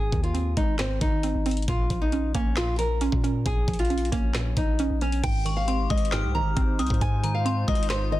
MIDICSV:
0, 0, Header, 1, 7, 480
1, 0, Start_track
1, 0, Key_signature, -4, "major"
1, 0, Tempo, 444444
1, 1814, Time_signature, 4, 2, 24, 8
1, 8854, End_track
2, 0, Start_track
2, 0, Title_t, "Synth bell"
2, 0, Program_c, 0, 98
2, 5896, Note_on_c, 0, 85, 89
2, 6123, Note_off_c, 0, 85, 0
2, 6131, Note_on_c, 0, 84, 80
2, 6361, Note_off_c, 0, 84, 0
2, 6373, Note_on_c, 0, 87, 86
2, 6602, Note_off_c, 0, 87, 0
2, 6609, Note_on_c, 0, 89, 89
2, 7289, Note_off_c, 0, 89, 0
2, 7335, Note_on_c, 0, 87, 76
2, 7563, Note_off_c, 0, 87, 0
2, 7817, Note_on_c, 0, 82, 80
2, 8044, Note_off_c, 0, 82, 0
2, 8053, Note_on_c, 0, 84, 82
2, 8282, Note_off_c, 0, 84, 0
2, 8292, Note_on_c, 0, 87, 85
2, 8521, Note_off_c, 0, 87, 0
2, 8531, Note_on_c, 0, 84, 84
2, 8854, Note_off_c, 0, 84, 0
2, 8854, End_track
3, 0, Start_track
3, 0, Title_t, "Nylon-string guitar"
3, 0, Program_c, 1, 24
3, 0, Note_on_c, 1, 68, 102
3, 234, Note_off_c, 1, 68, 0
3, 253, Note_on_c, 1, 65, 75
3, 592, Note_off_c, 1, 65, 0
3, 616, Note_on_c, 1, 63, 79
3, 824, Note_off_c, 1, 63, 0
3, 849, Note_on_c, 1, 60, 80
3, 1060, Note_off_c, 1, 60, 0
3, 1097, Note_on_c, 1, 63, 84
3, 1772, Note_off_c, 1, 63, 0
3, 1820, Note_on_c, 1, 65, 106
3, 2156, Note_off_c, 1, 65, 0
3, 2177, Note_on_c, 1, 63, 84
3, 2514, Note_off_c, 1, 63, 0
3, 2537, Note_on_c, 1, 61, 82
3, 2745, Note_off_c, 1, 61, 0
3, 2779, Note_on_c, 1, 65, 96
3, 2986, Note_off_c, 1, 65, 0
3, 3008, Note_on_c, 1, 70, 86
3, 3688, Note_off_c, 1, 70, 0
3, 3738, Note_on_c, 1, 68, 101
3, 4075, Note_off_c, 1, 68, 0
3, 4097, Note_on_c, 1, 65, 87
3, 4434, Note_off_c, 1, 65, 0
3, 4456, Note_on_c, 1, 61, 78
3, 4906, Note_off_c, 1, 61, 0
3, 4939, Note_on_c, 1, 63, 75
3, 5388, Note_off_c, 1, 63, 0
3, 5419, Note_on_c, 1, 61, 82
3, 5626, Note_off_c, 1, 61, 0
3, 5654, Note_on_c, 1, 79, 109
3, 5992, Note_off_c, 1, 79, 0
3, 6011, Note_on_c, 1, 77, 80
3, 6351, Note_off_c, 1, 77, 0
3, 6374, Note_on_c, 1, 75, 72
3, 6583, Note_off_c, 1, 75, 0
3, 6616, Note_on_c, 1, 79, 101
3, 6824, Note_off_c, 1, 79, 0
3, 6855, Note_on_c, 1, 82, 80
3, 7531, Note_off_c, 1, 82, 0
3, 7574, Note_on_c, 1, 80, 105
3, 7913, Note_off_c, 1, 80, 0
3, 7933, Note_on_c, 1, 77, 75
3, 8272, Note_off_c, 1, 77, 0
3, 8297, Note_on_c, 1, 75, 81
3, 8505, Note_off_c, 1, 75, 0
3, 8529, Note_on_c, 1, 72, 82
3, 8740, Note_off_c, 1, 72, 0
3, 8772, Note_on_c, 1, 75, 87
3, 8854, Note_off_c, 1, 75, 0
3, 8854, End_track
4, 0, Start_track
4, 0, Title_t, "Analog synth pad"
4, 0, Program_c, 2, 89
4, 5654, Note_on_c, 2, 63, 81
4, 5655, Note_on_c, 2, 56, 89
4, 5655, Note_on_c, 2, 67, 82
4, 5655, Note_on_c, 2, 72, 97
4, 7555, Note_off_c, 2, 67, 0
4, 7575, Note_on_c, 2, 65, 81
4, 8854, Note_off_c, 2, 56, 0
4, 8854, Note_off_c, 2, 63, 0
4, 8854, Note_off_c, 2, 65, 0
4, 8854, Note_off_c, 2, 72, 0
4, 8854, End_track
5, 0, Start_track
5, 0, Title_t, "Synth pluck"
5, 0, Program_c, 3, 84
5, 0, Note_on_c, 3, 44, 85
5, 0, Note_on_c, 3, 51, 75
5, 0, Note_on_c, 3, 60, 88
5, 123, Note_off_c, 3, 51, 0
5, 136, Note_on_c, 3, 51, 82
5, 358, Note_off_c, 3, 60, 0
5, 371, Note_on_c, 3, 60, 82
5, 617, Note_on_c, 3, 56, 93
5, 845, Note_off_c, 3, 44, 0
5, 858, Note_on_c, 3, 44, 75
5, 1078, Note_off_c, 3, 51, 0
5, 1090, Note_on_c, 3, 51, 76
5, 1323, Note_off_c, 3, 60, 0
5, 1336, Note_on_c, 3, 60, 94
5, 1564, Note_off_c, 3, 60, 0
5, 1577, Note_on_c, 3, 60, 88
5, 1813, Note_off_c, 3, 51, 0
5, 1816, Note_off_c, 3, 44, 0
5, 1816, Note_off_c, 3, 56, 0
5, 1816, Note_off_c, 3, 60, 0
5, 1816, Note_on_c, 3, 46, 89
5, 2055, Note_on_c, 3, 53, 73
5, 2295, Note_on_c, 3, 61, 83
5, 2535, Note_on_c, 3, 58, 102
5, 2765, Note_off_c, 3, 46, 0
5, 2778, Note_on_c, 3, 46, 71
5, 3003, Note_off_c, 3, 53, 0
5, 3016, Note_on_c, 3, 53, 72
5, 3240, Note_off_c, 3, 61, 0
5, 3253, Note_on_c, 3, 61, 101
5, 3484, Note_off_c, 3, 61, 0
5, 3497, Note_on_c, 3, 61, 87
5, 3719, Note_off_c, 3, 46, 0
5, 3732, Note_on_c, 3, 46, 87
5, 3735, Note_off_c, 3, 58, 0
5, 3963, Note_off_c, 3, 53, 0
5, 3976, Note_on_c, 3, 53, 71
5, 4200, Note_off_c, 3, 61, 0
5, 4213, Note_on_c, 3, 61, 82
5, 4450, Note_on_c, 3, 58, 98
5, 4680, Note_off_c, 3, 46, 0
5, 4692, Note_on_c, 3, 46, 76
5, 4919, Note_off_c, 3, 53, 0
5, 4932, Note_on_c, 3, 53, 76
5, 5167, Note_off_c, 3, 61, 0
5, 5180, Note_on_c, 3, 61, 94
5, 5405, Note_off_c, 3, 61, 0
5, 5418, Note_on_c, 3, 61, 83
5, 5653, Note_off_c, 3, 53, 0
5, 5653, Note_off_c, 3, 58, 0
5, 5653, Note_on_c, 3, 44, 86
5, 5654, Note_off_c, 3, 46, 0
5, 5656, Note_off_c, 3, 61, 0
5, 5887, Note_on_c, 3, 51, 79
5, 6133, Note_on_c, 3, 60, 76
5, 6380, Note_on_c, 3, 56, 96
5, 6605, Note_off_c, 3, 44, 0
5, 6618, Note_on_c, 3, 44, 72
5, 6844, Note_off_c, 3, 51, 0
5, 6857, Note_on_c, 3, 51, 75
5, 7077, Note_off_c, 3, 60, 0
5, 7090, Note_on_c, 3, 60, 107
5, 7323, Note_off_c, 3, 60, 0
5, 7335, Note_on_c, 3, 60, 89
5, 7560, Note_off_c, 3, 44, 0
5, 7573, Note_on_c, 3, 44, 90
5, 7577, Note_off_c, 3, 56, 0
5, 7801, Note_off_c, 3, 51, 0
5, 7814, Note_on_c, 3, 51, 79
5, 8036, Note_off_c, 3, 60, 0
5, 8049, Note_on_c, 3, 60, 85
5, 8295, Note_on_c, 3, 56, 96
5, 8523, Note_off_c, 3, 44, 0
5, 8536, Note_on_c, 3, 44, 74
5, 8756, Note_off_c, 3, 51, 0
5, 8769, Note_on_c, 3, 51, 75
5, 8854, Note_off_c, 3, 44, 0
5, 8854, Note_off_c, 3, 51, 0
5, 8854, Note_off_c, 3, 56, 0
5, 8854, Note_off_c, 3, 60, 0
5, 8854, End_track
6, 0, Start_track
6, 0, Title_t, "808-style bass"
6, 0, Program_c, 4, 38
6, 0, Note_on_c, 4, 32, 116
6, 125, Note_off_c, 4, 32, 0
6, 134, Note_on_c, 4, 39, 106
6, 595, Note_off_c, 4, 39, 0
6, 615, Note_on_c, 4, 32, 104
6, 1076, Note_off_c, 4, 32, 0
6, 1094, Note_on_c, 4, 32, 101
6, 1440, Note_off_c, 4, 32, 0
6, 1455, Note_on_c, 4, 32, 99
6, 1800, Note_off_c, 4, 32, 0
6, 1815, Note_on_c, 4, 34, 116
6, 2045, Note_off_c, 4, 34, 0
6, 2054, Note_on_c, 4, 34, 102
6, 2515, Note_off_c, 4, 34, 0
6, 2534, Note_on_c, 4, 34, 107
6, 3341, Note_off_c, 4, 34, 0
6, 3373, Note_on_c, 4, 46, 102
6, 3719, Note_off_c, 4, 46, 0
6, 3734, Note_on_c, 4, 34, 112
6, 3964, Note_off_c, 4, 34, 0
6, 3974, Note_on_c, 4, 34, 107
6, 4435, Note_off_c, 4, 34, 0
6, 4455, Note_on_c, 4, 34, 107
6, 4915, Note_off_c, 4, 34, 0
6, 4934, Note_on_c, 4, 34, 103
6, 5280, Note_off_c, 4, 34, 0
6, 5293, Note_on_c, 4, 34, 100
6, 5640, Note_off_c, 4, 34, 0
6, 5654, Note_on_c, 4, 32, 117
6, 6346, Note_off_c, 4, 32, 0
6, 6375, Note_on_c, 4, 32, 113
6, 6735, Note_on_c, 4, 36, 100
6, 6751, Note_off_c, 4, 32, 0
6, 6915, Note_on_c, 4, 32, 102
6, 6931, Note_off_c, 4, 36, 0
6, 7086, Note_off_c, 4, 32, 0
6, 7093, Note_on_c, 4, 32, 105
6, 7334, Note_on_c, 4, 36, 102
6, 7351, Note_off_c, 4, 32, 0
6, 7449, Note_off_c, 4, 36, 0
6, 7455, Note_on_c, 4, 44, 105
6, 8261, Note_off_c, 4, 44, 0
6, 8294, Note_on_c, 4, 32, 106
6, 8854, Note_off_c, 4, 32, 0
6, 8854, End_track
7, 0, Start_track
7, 0, Title_t, "Drums"
7, 134, Note_on_c, 9, 36, 98
7, 135, Note_on_c, 9, 42, 58
7, 242, Note_off_c, 9, 36, 0
7, 243, Note_off_c, 9, 42, 0
7, 255, Note_on_c, 9, 42, 59
7, 363, Note_off_c, 9, 42, 0
7, 374, Note_on_c, 9, 42, 62
7, 482, Note_off_c, 9, 42, 0
7, 614, Note_on_c, 9, 42, 90
7, 615, Note_on_c, 9, 36, 92
7, 722, Note_off_c, 9, 42, 0
7, 723, Note_off_c, 9, 36, 0
7, 849, Note_on_c, 9, 39, 92
7, 853, Note_on_c, 9, 42, 80
7, 854, Note_on_c, 9, 38, 116
7, 957, Note_off_c, 9, 39, 0
7, 961, Note_off_c, 9, 42, 0
7, 962, Note_off_c, 9, 38, 0
7, 1093, Note_on_c, 9, 42, 83
7, 1094, Note_on_c, 9, 36, 99
7, 1201, Note_off_c, 9, 42, 0
7, 1202, Note_off_c, 9, 36, 0
7, 1332, Note_on_c, 9, 42, 81
7, 1440, Note_off_c, 9, 42, 0
7, 1574, Note_on_c, 9, 42, 58
7, 1581, Note_on_c, 9, 46, 53
7, 1634, Note_off_c, 9, 42, 0
7, 1634, Note_on_c, 9, 42, 59
7, 1689, Note_off_c, 9, 46, 0
7, 1694, Note_off_c, 9, 42, 0
7, 1694, Note_on_c, 9, 42, 62
7, 1754, Note_off_c, 9, 42, 0
7, 1754, Note_on_c, 9, 42, 61
7, 1814, Note_off_c, 9, 42, 0
7, 1814, Note_on_c, 9, 42, 89
7, 1815, Note_on_c, 9, 36, 112
7, 1922, Note_off_c, 9, 42, 0
7, 1923, Note_off_c, 9, 36, 0
7, 2053, Note_on_c, 9, 42, 70
7, 2054, Note_on_c, 9, 36, 96
7, 2161, Note_off_c, 9, 42, 0
7, 2162, Note_off_c, 9, 36, 0
7, 2293, Note_on_c, 9, 42, 61
7, 2401, Note_off_c, 9, 42, 0
7, 2533, Note_on_c, 9, 42, 91
7, 2534, Note_on_c, 9, 36, 90
7, 2641, Note_off_c, 9, 42, 0
7, 2642, Note_off_c, 9, 36, 0
7, 2768, Note_on_c, 9, 39, 91
7, 2772, Note_on_c, 9, 42, 80
7, 2773, Note_on_c, 9, 38, 114
7, 2876, Note_off_c, 9, 39, 0
7, 2880, Note_off_c, 9, 42, 0
7, 2881, Note_off_c, 9, 38, 0
7, 3011, Note_on_c, 9, 42, 81
7, 3119, Note_off_c, 9, 42, 0
7, 3251, Note_on_c, 9, 42, 82
7, 3359, Note_off_c, 9, 42, 0
7, 3373, Note_on_c, 9, 36, 93
7, 3481, Note_off_c, 9, 36, 0
7, 3500, Note_on_c, 9, 42, 70
7, 3608, Note_off_c, 9, 42, 0
7, 3733, Note_on_c, 9, 42, 93
7, 3734, Note_on_c, 9, 36, 115
7, 3841, Note_off_c, 9, 42, 0
7, 3842, Note_off_c, 9, 36, 0
7, 3973, Note_on_c, 9, 36, 97
7, 3973, Note_on_c, 9, 42, 61
7, 4033, Note_off_c, 9, 42, 0
7, 4033, Note_on_c, 9, 42, 58
7, 4081, Note_off_c, 9, 36, 0
7, 4094, Note_off_c, 9, 42, 0
7, 4094, Note_on_c, 9, 42, 58
7, 4154, Note_off_c, 9, 42, 0
7, 4154, Note_on_c, 9, 42, 58
7, 4214, Note_off_c, 9, 42, 0
7, 4214, Note_on_c, 9, 42, 52
7, 4294, Note_off_c, 9, 42, 0
7, 4294, Note_on_c, 9, 42, 52
7, 4374, Note_off_c, 9, 42, 0
7, 4374, Note_on_c, 9, 42, 53
7, 4454, Note_off_c, 9, 42, 0
7, 4454, Note_on_c, 9, 36, 92
7, 4454, Note_on_c, 9, 42, 93
7, 4562, Note_off_c, 9, 36, 0
7, 4562, Note_off_c, 9, 42, 0
7, 4688, Note_on_c, 9, 39, 91
7, 4692, Note_on_c, 9, 42, 80
7, 4694, Note_on_c, 9, 38, 116
7, 4796, Note_off_c, 9, 39, 0
7, 4800, Note_off_c, 9, 42, 0
7, 4802, Note_off_c, 9, 38, 0
7, 4932, Note_on_c, 9, 42, 79
7, 4934, Note_on_c, 9, 36, 99
7, 5040, Note_off_c, 9, 42, 0
7, 5042, Note_off_c, 9, 36, 0
7, 5172, Note_on_c, 9, 42, 78
7, 5280, Note_off_c, 9, 42, 0
7, 5415, Note_on_c, 9, 42, 58
7, 5523, Note_off_c, 9, 42, 0
7, 5534, Note_on_c, 9, 42, 61
7, 5642, Note_off_c, 9, 42, 0
7, 5654, Note_on_c, 9, 36, 112
7, 5654, Note_on_c, 9, 42, 94
7, 5654, Note_on_c, 9, 49, 105
7, 5762, Note_off_c, 9, 36, 0
7, 5762, Note_off_c, 9, 42, 0
7, 5762, Note_off_c, 9, 49, 0
7, 5894, Note_on_c, 9, 42, 75
7, 6002, Note_off_c, 9, 42, 0
7, 6133, Note_on_c, 9, 42, 68
7, 6241, Note_off_c, 9, 42, 0
7, 6374, Note_on_c, 9, 42, 53
7, 6375, Note_on_c, 9, 36, 93
7, 6454, Note_off_c, 9, 42, 0
7, 6454, Note_on_c, 9, 42, 74
7, 6483, Note_off_c, 9, 36, 0
7, 6534, Note_off_c, 9, 42, 0
7, 6534, Note_on_c, 9, 42, 92
7, 6607, Note_on_c, 9, 39, 93
7, 6612, Note_off_c, 9, 42, 0
7, 6612, Note_on_c, 9, 42, 81
7, 6613, Note_on_c, 9, 38, 118
7, 6715, Note_off_c, 9, 39, 0
7, 6720, Note_off_c, 9, 42, 0
7, 6721, Note_off_c, 9, 38, 0
7, 7091, Note_on_c, 9, 42, 82
7, 7093, Note_on_c, 9, 36, 102
7, 7199, Note_off_c, 9, 42, 0
7, 7201, Note_off_c, 9, 36, 0
7, 7335, Note_on_c, 9, 42, 72
7, 7415, Note_off_c, 9, 42, 0
7, 7415, Note_on_c, 9, 42, 59
7, 7455, Note_on_c, 9, 36, 100
7, 7495, Note_off_c, 9, 42, 0
7, 7495, Note_on_c, 9, 42, 43
7, 7563, Note_off_c, 9, 36, 0
7, 7574, Note_on_c, 9, 36, 110
7, 7575, Note_off_c, 9, 42, 0
7, 7575, Note_on_c, 9, 42, 92
7, 7682, Note_off_c, 9, 36, 0
7, 7683, Note_off_c, 9, 42, 0
7, 7814, Note_on_c, 9, 42, 76
7, 7922, Note_off_c, 9, 42, 0
7, 8054, Note_on_c, 9, 42, 66
7, 8162, Note_off_c, 9, 42, 0
7, 8294, Note_on_c, 9, 42, 54
7, 8295, Note_on_c, 9, 36, 91
7, 8374, Note_off_c, 9, 42, 0
7, 8374, Note_on_c, 9, 42, 73
7, 8403, Note_off_c, 9, 36, 0
7, 8453, Note_off_c, 9, 42, 0
7, 8453, Note_on_c, 9, 42, 92
7, 8527, Note_on_c, 9, 39, 91
7, 8531, Note_off_c, 9, 42, 0
7, 8531, Note_on_c, 9, 42, 83
7, 8532, Note_on_c, 9, 38, 121
7, 8635, Note_off_c, 9, 39, 0
7, 8639, Note_off_c, 9, 42, 0
7, 8640, Note_off_c, 9, 38, 0
7, 8854, End_track
0, 0, End_of_file